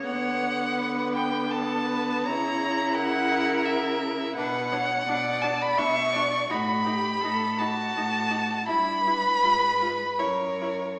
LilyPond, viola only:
\new Staff \with { instrumentName = "Viola" } { \time 3/4 \key b \minor \tempo 4 = 83 b2. | e'2. | d'8 d'8 d'8 d'8 d'8 d'8 | dis'8 dis'8 dis'8 dis'8 dis'8 dis'8 |
e'8 e'8 eis'8 eis'8 e'8 e'8 | }